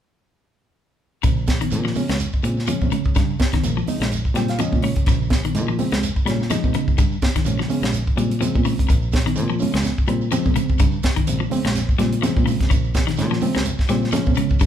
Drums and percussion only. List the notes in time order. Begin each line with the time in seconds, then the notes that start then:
1.23 kick, closed hi-hat, shekere
1.36 shekere
1.47 kick, snare, closed hi-hat, high conga, shekere
1.60 closed hi-hat, high conga, shekere
1.70 closed hi-hat, low conga, shekere
1.85 snare, shekere
1.95 open hi-hat, high conga, low conga, shekere
2.09 snare, closed hi-hat, shekere
2.19 closed hi-hat, shekere
2.32 kick, shekere
2.43 closed hi-hat, shekere
2.57 snare, shekere
2.67 closed hi-hat, high conga, shekere
2.81 kick, high conga, shekere
2.91 closed hi-hat, high conga, low conga, shekere
3.04 kick, shekere
3.15 kick, snare, closed hi-hat, shekere
3.29 shekere
3.39 kick, snare, closed hi-hat, high conga, shekere
3.53 kick, snare, closed hi-hat, high conga, shekere
3.64 closed hi-hat, low conga, shekere
3.78 shekere
3.87 open hi-hat, high conga, low conga, shekere
4.01 snare, closed hi-hat
4.12 closed hi-hat, shekere
4.25 kick, shekere
4.35 snare, closed hi-hat, shekere
4.48 snare, closed hi-hat, shekere
4.59 closed hi-hat, high conga, shekere
4.72 kick, high conga, shekere
4.82 open hi-hat, low conga, shekere
4.96 kick, closed hi-hat, shekere
5.06 kick, snare, closed hi-hat, shekere
5.22 shekere
5.30 kick, snare, closed hi-hat, high conga, shekere
5.44 closed hi-hat, high conga, shekere
5.55 closed hi-hat, low conga, shekere
5.69 shekere
5.79 open hi-hat, high conga, low conga, shekere
5.92 snare, closed hi-hat
6.03 closed hi-hat, shekere
6.16 kick, shekere
6.27 snare, closed hi-hat, low conga, shekere
6.40 snare, shekere
6.50 snare, closed hi-hat, high conga, shekere
6.64 kick, high conga, shekere
6.74 closed hi-hat, high conga, low conga, shekere
6.88 kick, shekere
6.98 kick, closed hi-hat, shekere
7.12 shekere
7.22 kick, snare, closed hi-hat, high conga, shekere
7.35 kick, snare, closed hi-hat, shekere
7.45 closed hi-hat, low conga, shekere
7.58 snare, shekere
7.69 open hi-hat, high conga, low conga, shekere
7.83 snare, closed hi-hat, shekere
7.93 closed hi-hat, shekere
8.07 kick, shekere
8.18 closed hi-hat, shekere
8.31 closed hi-hat, shekere
8.41 closed hi-hat, high conga, shekere
8.55 kick, high conga, shekere
8.65 open hi-hat, high conga, low conga, shekere
8.78 kick, closed hi-hat, shekere
8.89 kick, closed hi-hat, shekere
9.02 shekere
9.12 kick, snare, closed hi-hat, high conga, shekere
9.26 closed hi-hat, high conga, shekere
9.36 closed hi-hat, shekere
9.49 shekere
9.59 open hi-hat, high conga, low conga, shekere
9.72 snare, closed hi-hat, shekere
9.83 snare, closed hi-hat, high conga, shekere
9.97 kick, shekere
10.07 closed hi-hat, shekere
10.21 shekere
10.32 closed hi-hat, high conga, shekere
10.45 kick, high conga, shekere
10.55 closed hi-hat, high conga, low conga, shekere
10.69 kick, shekere
10.78 kick, closed hi-hat, shekere
10.92 shekere
11.03 kick, snare, closed hi-hat, high conga, shekere
11.16 kick, closed hi-hat, shekere
11.27 closed hi-hat, shekere
11.41 shekere
11.51 open hi-hat, high conga, low conga, shekere
11.65 snare, closed hi-hat, shekere
11.75 snare, closed hi-hat, shekere
11.89 kick, shekere
11.99 snare, closed hi-hat, low conga, shekere
12.12 closed hi-hat, shekere
12.23 snare, closed hi-hat, high conga, shekere
12.37 kick, high conga, shekere
12.47 open hi-hat, low conga, shekere
12.60 kick, snare, closed hi-hat, shekere
12.71 kick, closed hi-hat, shekere
12.84 shekere
12.94 kick, snare, closed hi-hat, high conga, shekere
13.07 snare, closed hi-hat, shekere
13.17 snare, closed hi-hat, low conga, shekere
13.31 snare, shekere
13.41 open hi-hat, high conga, low conga, shekere
13.55 snare, closed hi-hat, shekere
13.65 closed hi-hat, shekere
13.78 kick, snare, shekere
13.88 snare, closed hi-hat, shekere
14.02 snare, shekere
14.12 snare, closed hi-hat, high conga, shekere
14.25 kick, high conga, shekere
14.35 closed hi-hat, high conga, low conga, shekere
14.49 kick, shekere
14.59 kick, closed hi-hat, shekere